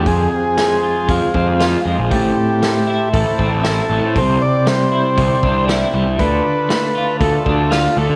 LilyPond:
<<
  \new Staff \with { instrumentName = "Harmonium" } { \time 4/4 \key d \dorian \tempo 4 = 118 << { <f' aes' aes''>1 | <e' a' a''>1 | g''1 | <f' a' a''>1 | } \\ { c''1~ | c''1 | d''1~ | d''1 | } >> }
  \new Staff \with { instrumentName = "Transistor combo organ" } { \time 4/4 \key d \dorian aes'2 f'4. r8 | g'2 a'2 | c''8 d''8 c''2 r4 | b'2 a'8 a'8 f'8 a'8 | }
  \new Staff \with { instrumentName = "Clean electric guitar" } { \time 4/4 \key d \dorian f,4 aes8 f'8 aes8 c'8 f'8 aes8 | a,4 a8 e'8 a8 c'8 e'8 a8 | c4 g8 e'8 g8 d'8 e'8 g8 | d4 a8 f'8 a8 d'8 f'8 a8 | }
  \new Staff \with { instrumentName = "Picked electric bass" } { \clef bass \time 4/4 \key d \dorian f,8 r4. f,16 r16 f,4 f,16 bes,,16 | a,,8 r4. a,,16 r16 a,,4 a,,16 a,16 | c,8 r4. c,16 r16 c,4 c,16 c,16 | d,8 r4. d,16 r16 d,4 d,16 d16 | }
  \new DrumStaff \with { instrumentName = "Drums" } \drummode { \time 4/4 <hho bd>4 <hho sn>4 <hho bd>8 bd8 <hho sn>4 | <hho bd>4 <hho sn>4 <hho bd>8 bd8 <hho sn>4 | <hho bd>4 <hho sn>4 <hho bd>8 bd8 <hho sn>4 | <hho bd>4 <hho sn>4 <hho bd>8 bd8 <hho sn>4 | }
>>